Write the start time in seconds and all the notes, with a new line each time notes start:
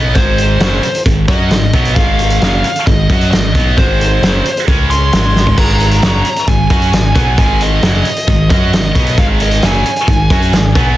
Already playing: B1 B2 F#3 B3 D#5
0.15 G#1 G#2 D#3 G#3 C5, kick, closed hi-hat
0.38 closed hi-hat
0.60 F#1 F#2 C#3 F#3, snare, closed hi-hat
0.83 muted distorted electric guitar stroke, closed hi-hat
0.95 closed hi-hat
1.06 G#1 G#2 D#3, kick, closed hi-hat
1.28 F#2 F#3 C#4 F#4 D#5, kick, closed hi-hat
1.50 G#1 G#2 D#3, snare, closed hi-hat
1.73 B1 B2 F#3 B3, kick, closed hi-hat
1.85 closed hi-hat
1.95 G#1 G#2 D#3 G#3 F5, kick, closed hi-hat
2.19 closed hi-hat
2.30 closed hi-hat
2.42 F#1 F#2 C#3 F#3, snare, closed hi-hat
2.64 muted picked electric bass stroke, muted distorted electric guitar stroke, closed hi-hat
2.76 closed hi-hat
2.87 G#1 G#2 D#3 D#5, kick, closed hi-hat
3.10 F#2 F#3 C#4 F#4, kick, closed hi-hat
3.21 closed hi-hat
3.31 G#1 G#2 D#3 D#5, snare, closed hi-hat
3.55 B1 B2 F#3 B3, kick, closed hi-hat
3.77 G#1 G#2 D#3 G#3 C5, kick, closed hi-hat
4.01 closed hi-hat
4.22 F#1 F#2 C#3 F#3, snare, closed hi-hat
4.45 muted picked electric bass stroke, muted distorted electric guitar stroke, closed hi-hat
4.57 closed hi-hat
4.68 C#2 C#3 G#3 C#4, kick, closed hi-hat
4.90 C6, closed hi-hat
5.13 G#1 G#2 D#3 G#3, snare, closed hi-hat
5.36 snare
5.47 floor tom
5.58 G#1 G#2 D#3 G#3 A#5, kick, crash
5.80 closed hi-hat
5.91 closed hi-hat
6.02 F#2 C#3 F#3, snare, closed hi-hat
6.25 muted distorted electric guitar stroke, closed hi-hat
6.36 closed hi-hat
6.47 G#1 G#2 D#3 G#5, kick, closed hi-hat
6.70 F#2 F#3 C#4 F#4, kick, closed hi-hat
6.82 closed hi-hat
6.93 G#1 G#2 D#3, snare, closed hi-hat
7.15 B1 B2 F#3 B3, kick, closed hi-hat
7.37 G#1 G#2 D#3 G#3 G#5, kick, closed hi-hat
7.61 D#5, closed hi-hat
7.82 F#1 F#2 C#3 F#3, snare, closed hi-hat
8.05 muted distorted electric guitar stroke, muted picked electric bass stroke, closed hi-hat
8.16 closed hi-hat
8.27 G#1 G#2 D#3, kick, closed hi-hat
8.50 F#2 F#3 C#4 F#4 D#5, kick, closed hi-hat
8.73 G#1 G#2 D#3, snare, closed hi-hat
8.95 B1 B2 F#3 B3, kick, closed hi-hat
9.07 closed hi-hat
9.18 G#1 G#2 D#3 G#3 F5, kick, closed hi-hat
9.40 D#5, closed hi-hat
9.51 closed hi-hat
9.62 F#1 F#2 C#3 F#3 G#5, snare, closed hi-hat
9.86 muted picked electric bass stroke, muted distorted electric guitar stroke, closed hi-hat
9.96 closed hi-hat
10.08 G#1 G#2 D#3, kick, closed hi-hat
10.30 F#2 F#3 C#4 F#4, kick, closed hi-hat
10.42 closed hi-hat
10.53 G#1 G#2 D#3, snare, closed hi-hat
10.75 B1 B2 F#3 B3, kick, closed hi-hat